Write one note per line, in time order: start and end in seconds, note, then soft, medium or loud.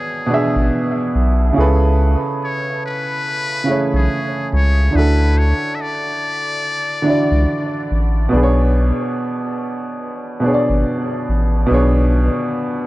0.00 0.26 B2 medium
0.00 0.28 B3 medium
0.00 0.30 D4 medium
0.00 1.11 G#4 medium
0.00 1.58 C#5 medium
0.00 1.58 G#5 medium
0.26 1.25 B2 medium
0.26 1.26 B3 medium
0.26 1.27 D4 medium
0.32 1.28 G#4 medium
0.32 1.29 E5 medium
0.56 0.70 A1 medium
1.15 1.52 B1 medium
1.53 2.82 C#3 medium
1.53 2.82 C#4 medium
1.53 2.83 E4 medium
1.57 2.16 C#2 loud
1.57 2.84 G#4 medium
1.57 2.85 A4 medium
1.57 2.85 B4 loud
2.44 2.82 C#5 medium
2.86 3.90 B4 loud
3.64 4.63 C#3 medium
3.64 4.64 C#4 medium
3.64 4.64 E4 medium
3.68 4.66 A3 medium
3.68 4.65 G#4 medium
3.68 4.67 C#5 medium
3.94 4.08 B1 medium
3.94 4.50 G#4 medium
4.53 4.90 C#2 medium
4.53 4.97 C#5 loud
4.91 6.20 D3 medium
4.91 6.21 D4 medium
4.91 6.22 E4 medium
4.95 5.53 D2 loud
4.95 6.23 F#4 medium
4.95 6.24 A4 medium
4.95 5.40 B4 loud
5.38 5.77 C#5 loud
5.75 5.83 E5 medium
5.81 7.91 D5 loud
7.02 8.01 D3 medium
7.02 8.02 D4 medium
7.02 8.03 E4 medium
7.08 8.04 F#4 medium
7.08 8.05 D5 loud
7.31 7.46 C#2 medium
7.91 8.28 A1 medium
8.29 9.58 B2 medium
8.29 9.59 B3 medium
8.29 9.60 D4 medium
8.34 8.92 B1 loud
8.34 9.61 G#4 medium
8.34 8.42 B4 medium
8.43 9.65 C#5 loud
10.40 11.39 B2 medium
10.40 11.40 B3 medium
10.44 11.41 D4 medium
10.44 11.42 G#4 medium
10.44 10.53 C#5 medium
10.54 11.46 D5 medium
10.70 10.84 G#1 medium
11.29 11.66 A1 medium
11.66 12.87 B2 medium
11.66 12.87 B3 medium
11.66 12.87 D4 medium
11.71 12.30 B1 loud
11.71 12.87 G#4 medium
11.71 12.87 C#5 medium